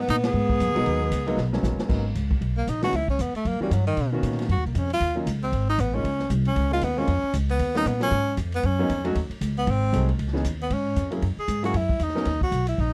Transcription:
Already playing: alto saxophone B3
0.01 tenor saxophone B3
0.08 upright bass A#2, tenor saxophone D#4, kick, hi-hat pedal, ride
0.24 tenor saxophone G#4, snare, ride
0.33 upright bass G#2
0.49 kick
0.60 upright bass F#2, hi-hat pedal, ride
0.67 upright bass D#2
0.75 upright bass B1, grand piano F#3 G#3 B3 D#4 A#4, ride
0.85 upright bass D#2, kick, ride
1.11 upright bass C#2, kick, hi-hat pedal, ride
1.27 grand piano F#3 G#3 A#3 B3 D#4, ride
1.37 upright bass B1, snare
1.53 grand piano F#3 G#3 A#3 B3 C#4, snare
1.63 upright bass A#1, snare, hi-hat pedal
1.78 muted upright bass stroke, snare
1.88 upright bass G#1, grand piano F#3 A#3 B3 C#4 D#4, kick, crash
2.15 upright bass C#2, kick, hi-hat pedal, ride
2.31 kick
2.41 upright bass B1, kick, ride
2.57 tenor saxophone A#3
2.67 upright bass A#1, tenor saxophone D#4, kick, hi-hat pedal, ride
2.82 grand piano E3 G#3 B3 C#4 D#4, tenor saxophone F#4, snare, ride
2.93 upright bass C#2, tenor saxophone E4, kick, snare, ride
3.08 tenor saxophone C#4, kick
3.19 upright bass E2, tenor saxophone B3, kick, hi-hat pedal, ride
3.33 tenor saxophone A3, muted upright bass stroke, ride
3.45 upright bass F#2, tenor saxophone A#3, kick, ride
3.60 grand piano E3 G3 A#3 C#4 F#4, tenor saxophone G3, muted upright bass stroke
3.71 upright bass G2, tenor saxophone F#3, kick, hi-hat pedal, ride
3.87 tenor saxophone D#3, ride
3.97 upright bass B2, kick, ride
4.12 grand piano D#3 A#3 B3 C#4 F#4
4.23 upright bass A#2, kick, hi-hat pedal, ride
4.32 snare
4.39 snare, ride
4.49 upright bass F#2, tenor saxophone F#4, kick, ride
4.56 upright bass D#2
4.65 upright bass B1, tenor saxophone A#3
4.75 upright bass F2, tenor saxophone C#4, kick, hi-hat pedal, ride
4.90 tenor saxophone F4, ride
5.00 upright bass D#2, kick, ride
5.15 grand piano F#3 A#3 C#4 D#4 F4
5.26 upright bass C#2, kick, hi-hat pedal, ride
5.43 tenor saxophone C4
5.52 upright bass G#1, kick, ride
5.70 tenor saxophone D#4
5.78 upright bass A1, tenor saxophone B3, kick, hi-hat pedal, ride
5.93 grand piano G#3 A#3 C#4 D#4 F4, tenor saxophone C#4
6.04 upright bass C#2, kick, ride
6.19 snare
6.30 upright bass C2, kick, hi-hat pedal, ride
6.45 tenor saxophone C#4, ride
6.56 upright bass C#2, kick, ride
6.71 grand piano G#3 A#3 C#4 D#4 F4, tenor saxophone F4
6.81 upright bass D#2, tenor saxophone B3, kick, hi-hat pedal, ride
6.97 grand piano G#3 A#3 C4 C#4 F4, tenor saxophone C#4
7.07 upright bass F2, kick, ride
7.23 muted upright bass stroke
7.34 upright bass C#2, kick, hi-hat pedal, ride
7.49 tenor saxophone B3, ride
7.59 upright bass D#2, kick, ride
7.75 grand piano G3 A#3 B3 C#4 D#4, tenor saxophone D#4, snare
7.85 upright bass A#2, tenor saxophone B3, kick, hi-hat pedal, ride
8.00 grand piano F#3 A#3 B3 C#4 F4, tenor saxophone C#4, snare, ride
8.11 upright bass G#2, kick, ride
8.37 upright bass F2, kick, hi-hat pedal, ride
8.52 tenor saxophone B3, ride
8.63 upright bass F#2, tenor saxophone C#4, kick, ride
8.79 grand piano F#3 A#3 B3 C#4 D#4
8.89 upright bass F2, kick, hi-hat pedal, ride
9.04 grand piano F#3 A3 C#4 D#4 F#4, ride
9.15 upright bass D#2, kick, ride
9.29 muted upright bass stroke, ride
9.41 upright bass C#2, kick, hi-hat pedal, ride
9.58 tenor saxophone B3
9.67 upright bass G#1, tenor saxophone C4, kick, ride
9.92 upright bass C2, grand piano F#3 A3 C4 D#4 G#4, kick, hi-hat pedal, ride
10.09 ride
10.19 upright bass C#2, kick, ride
10.27 snare
10.33 grand piano E3 B3 C#4 D#4 G#4, snare
10.44 upright bass D#2, kick, hi-hat pedal, ride
10.62 tenor saxophone B3
10.70 upright bass G#2, tenor saxophone C#4, kick, ride
10.96 upright bass F2, kick, hi-hat pedal, ride
11.11 grand piano F#3 A#3 C#4 E4 G#4, ride
11.22 upright bass F#2, kick, ride
11.37 tenor saxophone G#4, muted upright bass stroke
11.48 upright bass G#2, kick, hi-hat pedal, ride
11.63 grand piano F#3 A#3 C#4 E4 G#4, tenor saxophone F#4, ride
11.74 upright bass F#2, tenor saxophone E4, kick, ride
11.89 kick
11.99 upright bass E2, tenor saxophone D#4, kick, hi-hat pedal, ride
12.08 snare
12.15 grand piano F#3 B3 C#4 D#4 A#4, snare
12.25 upright bass D#2, kick, snare, ride
12.41 tenor saxophone F#4, kick
12.51 upright bass B1, kick, hi-hat pedal, ride
12.67 tenor saxophone E4, ride
12.78 upright bass A#1, tenor saxophone D#4, kick

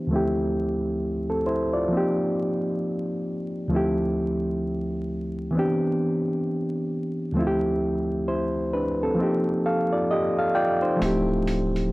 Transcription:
Already playing: reed electric piano E3 B3 C4 D4 E4 G4 C5
0.07 reed electric piano D2 F3 A3
0.12 reed electric piano C4 E4 G4
1.30 reed electric piano C4 A4
1.47 reed electric piano E4 C5
1.73 reed electric piano F4 D5
1.88 reed electric piano F3 A#3
1.93 reed electric piano C4 D#4
1.97 reed electric piano G4
3.68 reed electric piano D2 F3 A3
3.73 reed electric piano C4 E4 G4
5.51 reed electric piano E3 B3
5.55 reed electric piano C4 D4
5.59 reed electric piano G4
7.32 reed electric piano D2 F3 A3
7.37 reed electric piano C4 E4 F4
7.47 reed electric piano G4
8.28 reed electric piano E4 C5
8.73 reed electric piano D4 B4
9.03 reed electric piano C4 A4
9.15 reed electric piano F3 A#3
9.19 reed electric piano C4 D#4 G4
9.66 reed electric piano A4 F5
9.92 reed electric piano F4 D5
10.11 reed electric piano G4 D#5
10.39 reed electric piano A4 F5
10.55 reed electric piano F4 D5 G5
10.82 reed electric piano D#4 C5
10.96 reed electric piano F3 A3
11.01 sub bass D1, reed electric piano C4 E4, closed hi-hat
11.05 reed electric piano G4
11.47 closed hi-hat
11.76 closed hi-hat

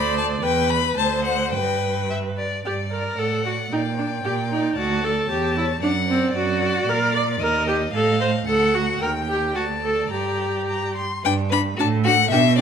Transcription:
Already playing: cello D2, violin C5 B5, viola D5
0.18 violin A5
0.42 cello E2, viola B4, violin B4 G5
0.70 violin B5
0.96 cello D2, viola C5, violin C5 A5
1.25 violin F#5
1.52 cello G2, viola B4, violin B4 G5
2.10 violin E5
2.38 violin D5
2.64 cello G2, viola G4, violin D5
2.91 viola A#4, violin D5
3.17 cello A2, viola A4, violin D5 F#5
3.44 viola F#4, violin D5
3.70 cello A#2, viola D#4, violin D5 G5
3.97 viola D4, violin D5
4.23 cello A#2, viola G4, violin D5
4.51 viola D#4, violin D5
4.76 cello D2, viola F#4, violin D5 A5
5.03 viola A4, violin D5
5.29 cello E2, viola G4, violin C#5
5.56 viola E4, violin C#5
5.82 cello F#2, viola D4, violin D5 F#5
6.08 viola C4, violin D5
6.33 cello F#2, viola F#4, violin D5
6.60 violin D5
6.86 cello A#2, viola A#4, violin D5
7.15 viola D5
7.39 cello D#2, viola A#4, violin D#5
7.68 viola G4
7.93 cello A2, viola A4, violin D#5 F5
8.21 viola C5
8.47 cello D2, viola A4, violin F#5
8.74 viola F#4
9.00 cello D#2, viola A#4, violin G5
9.28 viola G4
9.55 cello D2, viola F#4, violin D5 A5
9.84 viola A4
10.11 cello G2, viola G4, violin A#5
10.69 violin A#5
10.96 violin C6
11.24 cello G2, viola D4, violin B4 G5
11.49 viola D4, violin B4 B5
11.77 cello A2, viola D4, violin F#4 A5
12.04 viola D4, violin F#4 F#5
12.31 cello B2, viola D4, violin G4 E5
12.58 viola D4

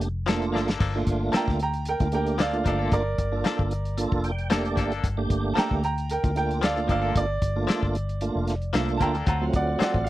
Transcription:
Already playing: fingered electric bass F1
0.01 closed hi-hat
0.26 clean electric guitar F3 A#3 D4 A4, tonewheel organ A3 A#3 D4 F4, snare, closed hi-hat
0.42 closed hi-hat
0.53 fingered electric bass G1, clean electric guitar F3 A#3 D4 A4, snare
0.67 clean electric guitar A#3 D4 A4, snare
0.79 fingered electric bass G1, clean electric guitar F3 A#3 D4 A4, kick, crash
0.95 tonewheel organ A3 A#3 D4 F4
1.07 fingered electric bass G1, kick, closed hi-hat
1.32 clean electric guitar F3 A#3 D4 A4, upright piano G5 A5, muted fingered electric bass stroke, snare, closed hi-hat
1.37 upright piano A#5
1.48 fingered electric bass D2, kick, snare
1.59 upright piano G5 A#5, closed hi-hat
1.74 closed hi-hat
1.85 upright piano A#4 G5, closed hi-hat
2.00 fingered electric bass D2, tonewheel organ A3 A#3 D4 F4, kick, closed hi-hat
2.12 tonewheel organ A3 A#3 D4 G4, upright piano A#4 G5, closed hi-hat
2.26 closed hi-hat
2.38 clean electric guitar F3 A#3 D4 A4, upright piano D5 F5, snare, closed hi-hat
2.53 tonewheel organ A3 A#3 D4 F4, closed hi-hat
2.64 fingered electric bass G1, clean electric guitar F3 A#3 D4 A4, upright piano D5 F5, kick, closed hi-hat
2.79 clean electric guitar A#3 D4 A4
2.92 fingered electric bass G1, upright piano A#4 D5, kick, closed hi-hat
3.18 fingered electric bass G1, kick, closed hi-hat
3.32 tonewheel organ A#3 D4 F4 A4
3.44 clean electric guitar F3 A#3 D4 A4, snare, closed hi-hat
3.59 fingered electric bass G1, kick
3.71 closed hi-hat
3.85 closed hi-hat
3.97 tonewheel organ A#3 D4 F4 A4, closed hi-hat
4.12 fingered electric bass F1, kick
4.24 tonewheel organ G5, closed hi-hat
4.38 closed hi-hat
4.50 clean electric guitar F3 A#3 D4 A4, tonewheel organ A3 A#3 D4 G4 D5, snare, closed hi-hat
4.65 closed hi-hat
4.76 fingered electric bass G1, clean electric guitar F3 A#3 D4 A4, kick, snare, closed hi-hat
4.91 clean electric guitar A#3 D4 A4, closed hi-hat
5.04 fingered electric bass G1, kick, closed hi-hat
5.17 tonewheel organ A3 A#3 D4 G4
5.30 fingered electric bass G1, kick, closed hi-hat
5.54 clean electric guitar F3 A#3 D4, upright piano A5, closed hi-hat
5.58 clean electric guitar A4, upright piano G5 A#5, snare
5.71 fingered electric bass D2, kick
5.84 upright piano G5 A#5, closed hi-hat
5.98 closed hi-hat
6.10 upright piano A#4 G5, closed hi-hat
6.23 fingered electric bass D2, tonewheel organ A3 A#3 D4 F4, kick, closed hi-hat
6.35 tonewheel organ A3 A#3 D4 F4, upright piano A#4 G5, closed hi-hat
6.51 closed hi-hat
6.62 clean electric guitar F3 A#3 D4 A4, upright piano D5 F5, snare, closed hi-hat
6.76 tonewheel organ A3 A#3 D4 F4, closed hi-hat
6.88 fingered electric bass G1, clean electric guitar F3 A#3 D4 A4, upright piano D5, kick, closed hi-hat
6.92 upright piano F5
7.02 clean electric guitar A#3 D4 A4
7.16 fingered electric bass G1, upright piano D5, kick, closed hi-hat
7.42 fingered electric bass G1, kick, closed hi-hat
7.56 tonewheel organ A3 A#3 D4 F4
7.67 clean electric guitar F3 A#3 D4 A4, snare, closed hi-hat
7.83 fingered electric bass G1, kick
7.95 closed hi-hat
8.09 closed hi-hat
8.21 tonewheel organ A3 A#3 D4 F4, closed hi-hat
8.36 fingered electric bass F1
8.47 snare, closed hi-hat
8.62 closed hi-hat
8.73 fingered electric bass C2, clean electric guitar F3 A#3 D4 A4, tonewheel organ A3 A#3 D4 F4, snare, closed hi-hat
8.89 closed hi-hat
8.97 fingered electric bass D2, clean electric guitar F3 A#3, upright piano A5, kick, closed hi-hat
9.02 clean electric guitar D4 A4, upright piano G5 A#5
9.14 clean electric guitar A#3 D4 A4, closed hi-hat
9.26 fingered electric bass D2, clean electric guitar F#3 C4 F4 A4, upright piano F#5 A#5, kick, closed hi-hat
9.41 tonewheel organ F#3 A3 C4 F4
9.53 fingered electric bass D2, upright piano D5 F#5, kick, closed hi-hat
9.79 clean electric guitar F#3 C4 F4 A4, upright piano D5 F#5, muted fingered electric bass stroke, snare, closed hi-hat
9.94 fingered electric bass A1, kick
10.04 upright piano F5, closed hi-hat

